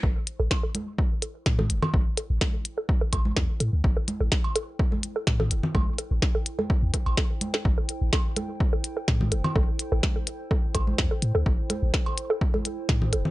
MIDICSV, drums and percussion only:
0, 0, Header, 1, 2, 480
1, 0, Start_track
1, 0, Key_signature, 0, "minor"
1, 0, Tempo, 476190
1, 32, Time_signature, 4, 2, 24, 8
1, 13414, End_track
2, 0, Start_track
2, 0, Title_t, "Drums"
2, 33, Note_on_c, 9, 36, 108
2, 134, Note_off_c, 9, 36, 0
2, 273, Note_on_c, 9, 42, 88
2, 374, Note_off_c, 9, 42, 0
2, 512, Note_on_c, 9, 56, 64
2, 513, Note_on_c, 9, 36, 116
2, 513, Note_on_c, 9, 38, 92
2, 613, Note_off_c, 9, 36, 0
2, 613, Note_off_c, 9, 56, 0
2, 614, Note_off_c, 9, 38, 0
2, 753, Note_on_c, 9, 42, 88
2, 753, Note_on_c, 9, 63, 42
2, 853, Note_off_c, 9, 42, 0
2, 853, Note_off_c, 9, 63, 0
2, 992, Note_on_c, 9, 36, 118
2, 1093, Note_off_c, 9, 36, 0
2, 1232, Note_on_c, 9, 42, 86
2, 1333, Note_off_c, 9, 42, 0
2, 1472, Note_on_c, 9, 36, 115
2, 1472, Note_on_c, 9, 38, 91
2, 1573, Note_off_c, 9, 36, 0
2, 1573, Note_off_c, 9, 38, 0
2, 1599, Note_on_c, 9, 63, 43
2, 1599, Note_on_c, 9, 64, 82
2, 1700, Note_off_c, 9, 63, 0
2, 1700, Note_off_c, 9, 64, 0
2, 1712, Note_on_c, 9, 42, 86
2, 1813, Note_off_c, 9, 42, 0
2, 1840, Note_on_c, 9, 56, 62
2, 1840, Note_on_c, 9, 64, 81
2, 1941, Note_off_c, 9, 56, 0
2, 1941, Note_off_c, 9, 64, 0
2, 1952, Note_on_c, 9, 36, 120
2, 2053, Note_off_c, 9, 36, 0
2, 2192, Note_on_c, 9, 42, 89
2, 2293, Note_off_c, 9, 42, 0
2, 2431, Note_on_c, 9, 63, 42
2, 2432, Note_on_c, 9, 36, 119
2, 2432, Note_on_c, 9, 38, 92
2, 2532, Note_off_c, 9, 38, 0
2, 2532, Note_off_c, 9, 63, 0
2, 2533, Note_off_c, 9, 36, 0
2, 2672, Note_on_c, 9, 42, 88
2, 2773, Note_off_c, 9, 42, 0
2, 2912, Note_on_c, 9, 36, 124
2, 3013, Note_off_c, 9, 36, 0
2, 3151, Note_on_c, 9, 56, 61
2, 3152, Note_on_c, 9, 36, 59
2, 3152, Note_on_c, 9, 42, 87
2, 3252, Note_off_c, 9, 42, 0
2, 3252, Note_off_c, 9, 56, 0
2, 3253, Note_off_c, 9, 36, 0
2, 3279, Note_on_c, 9, 63, 45
2, 3380, Note_off_c, 9, 63, 0
2, 3392, Note_on_c, 9, 36, 119
2, 3392, Note_on_c, 9, 38, 86
2, 3493, Note_off_c, 9, 36, 0
2, 3493, Note_off_c, 9, 38, 0
2, 3632, Note_on_c, 9, 42, 91
2, 3733, Note_off_c, 9, 42, 0
2, 3872, Note_on_c, 9, 36, 120
2, 3973, Note_off_c, 9, 36, 0
2, 4112, Note_on_c, 9, 42, 91
2, 4112, Note_on_c, 9, 63, 46
2, 4213, Note_off_c, 9, 42, 0
2, 4213, Note_off_c, 9, 63, 0
2, 4352, Note_on_c, 9, 36, 118
2, 4352, Note_on_c, 9, 38, 92
2, 4453, Note_off_c, 9, 36, 0
2, 4453, Note_off_c, 9, 38, 0
2, 4479, Note_on_c, 9, 56, 61
2, 4580, Note_off_c, 9, 56, 0
2, 4592, Note_on_c, 9, 42, 91
2, 4693, Note_off_c, 9, 42, 0
2, 4832, Note_on_c, 9, 36, 118
2, 4933, Note_off_c, 9, 36, 0
2, 4960, Note_on_c, 9, 63, 45
2, 5061, Note_off_c, 9, 63, 0
2, 5072, Note_on_c, 9, 42, 91
2, 5173, Note_off_c, 9, 42, 0
2, 5312, Note_on_c, 9, 38, 87
2, 5313, Note_on_c, 9, 36, 121
2, 5413, Note_off_c, 9, 36, 0
2, 5413, Note_off_c, 9, 38, 0
2, 5440, Note_on_c, 9, 64, 80
2, 5540, Note_off_c, 9, 64, 0
2, 5553, Note_on_c, 9, 42, 92
2, 5654, Note_off_c, 9, 42, 0
2, 5680, Note_on_c, 9, 64, 79
2, 5780, Note_off_c, 9, 64, 0
2, 5793, Note_on_c, 9, 36, 120
2, 5793, Note_on_c, 9, 56, 58
2, 5793, Note_on_c, 9, 63, 45
2, 5893, Note_off_c, 9, 36, 0
2, 5894, Note_off_c, 9, 56, 0
2, 5894, Note_off_c, 9, 63, 0
2, 6033, Note_on_c, 9, 42, 90
2, 6133, Note_off_c, 9, 42, 0
2, 6273, Note_on_c, 9, 36, 126
2, 6273, Note_on_c, 9, 38, 88
2, 6373, Note_off_c, 9, 36, 0
2, 6374, Note_off_c, 9, 38, 0
2, 6512, Note_on_c, 9, 42, 92
2, 6613, Note_off_c, 9, 42, 0
2, 6640, Note_on_c, 9, 63, 43
2, 6741, Note_off_c, 9, 63, 0
2, 6753, Note_on_c, 9, 36, 120
2, 6853, Note_off_c, 9, 36, 0
2, 6992, Note_on_c, 9, 36, 60
2, 6992, Note_on_c, 9, 42, 92
2, 7093, Note_off_c, 9, 36, 0
2, 7093, Note_off_c, 9, 42, 0
2, 7120, Note_on_c, 9, 56, 61
2, 7221, Note_off_c, 9, 56, 0
2, 7232, Note_on_c, 9, 36, 116
2, 7232, Note_on_c, 9, 38, 84
2, 7333, Note_off_c, 9, 36, 0
2, 7333, Note_off_c, 9, 38, 0
2, 7472, Note_on_c, 9, 42, 90
2, 7472, Note_on_c, 9, 63, 44
2, 7573, Note_off_c, 9, 42, 0
2, 7573, Note_off_c, 9, 63, 0
2, 7599, Note_on_c, 9, 38, 56
2, 7700, Note_off_c, 9, 38, 0
2, 7712, Note_on_c, 9, 36, 116
2, 7813, Note_off_c, 9, 36, 0
2, 7952, Note_on_c, 9, 42, 89
2, 8053, Note_off_c, 9, 42, 0
2, 8192, Note_on_c, 9, 36, 113
2, 8192, Note_on_c, 9, 38, 84
2, 8192, Note_on_c, 9, 56, 64
2, 8292, Note_off_c, 9, 56, 0
2, 8293, Note_off_c, 9, 36, 0
2, 8293, Note_off_c, 9, 38, 0
2, 8432, Note_on_c, 9, 42, 84
2, 8432, Note_on_c, 9, 63, 42
2, 8533, Note_off_c, 9, 42, 0
2, 8533, Note_off_c, 9, 63, 0
2, 8672, Note_on_c, 9, 36, 120
2, 8773, Note_off_c, 9, 36, 0
2, 8912, Note_on_c, 9, 42, 87
2, 9013, Note_off_c, 9, 42, 0
2, 9152, Note_on_c, 9, 38, 80
2, 9153, Note_on_c, 9, 36, 109
2, 9253, Note_off_c, 9, 36, 0
2, 9253, Note_off_c, 9, 38, 0
2, 9280, Note_on_c, 9, 63, 43
2, 9280, Note_on_c, 9, 64, 74
2, 9381, Note_off_c, 9, 63, 0
2, 9381, Note_off_c, 9, 64, 0
2, 9392, Note_on_c, 9, 42, 90
2, 9493, Note_off_c, 9, 42, 0
2, 9520, Note_on_c, 9, 56, 64
2, 9520, Note_on_c, 9, 64, 75
2, 9621, Note_off_c, 9, 56, 0
2, 9621, Note_off_c, 9, 64, 0
2, 9632, Note_on_c, 9, 36, 109
2, 9733, Note_off_c, 9, 36, 0
2, 9872, Note_on_c, 9, 42, 86
2, 9973, Note_off_c, 9, 42, 0
2, 10112, Note_on_c, 9, 38, 84
2, 10113, Note_on_c, 9, 36, 116
2, 10113, Note_on_c, 9, 63, 41
2, 10213, Note_off_c, 9, 38, 0
2, 10213, Note_off_c, 9, 63, 0
2, 10214, Note_off_c, 9, 36, 0
2, 10352, Note_on_c, 9, 42, 81
2, 10453, Note_off_c, 9, 42, 0
2, 10593, Note_on_c, 9, 36, 113
2, 10694, Note_off_c, 9, 36, 0
2, 10832, Note_on_c, 9, 42, 84
2, 10832, Note_on_c, 9, 56, 66
2, 10833, Note_on_c, 9, 36, 57
2, 10933, Note_off_c, 9, 42, 0
2, 10933, Note_off_c, 9, 56, 0
2, 10934, Note_off_c, 9, 36, 0
2, 10960, Note_on_c, 9, 63, 42
2, 11061, Note_off_c, 9, 63, 0
2, 11072, Note_on_c, 9, 38, 83
2, 11073, Note_on_c, 9, 36, 105
2, 11173, Note_off_c, 9, 36, 0
2, 11173, Note_off_c, 9, 38, 0
2, 11312, Note_on_c, 9, 42, 84
2, 11413, Note_off_c, 9, 42, 0
2, 11553, Note_on_c, 9, 36, 106
2, 11654, Note_off_c, 9, 36, 0
2, 11793, Note_on_c, 9, 42, 82
2, 11793, Note_on_c, 9, 63, 41
2, 11894, Note_off_c, 9, 42, 0
2, 11894, Note_off_c, 9, 63, 0
2, 12033, Note_on_c, 9, 36, 113
2, 12033, Note_on_c, 9, 38, 86
2, 12134, Note_off_c, 9, 36, 0
2, 12134, Note_off_c, 9, 38, 0
2, 12160, Note_on_c, 9, 56, 67
2, 12261, Note_off_c, 9, 56, 0
2, 12273, Note_on_c, 9, 42, 82
2, 12374, Note_off_c, 9, 42, 0
2, 12513, Note_on_c, 9, 36, 110
2, 12614, Note_off_c, 9, 36, 0
2, 12640, Note_on_c, 9, 63, 40
2, 12741, Note_off_c, 9, 63, 0
2, 12753, Note_on_c, 9, 42, 86
2, 12854, Note_off_c, 9, 42, 0
2, 12993, Note_on_c, 9, 36, 109
2, 12993, Note_on_c, 9, 38, 84
2, 13093, Note_off_c, 9, 36, 0
2, 13093, Note_off_c, 9, 38, 0
2, 13120, Note_on_c, 9, 64, 73
2, 13221, Note_off_c, 9, 64, 0
2, 13232, Note_on_c, 9, 42, 82
2, 13333, Note_off_c, 9, 42, 0
2, 13359, Note_on_c, 9, 64, 74
2, 13414, Note_off_c, 9, 64, 0
2, 13414, End_track
0, 0, End_of_file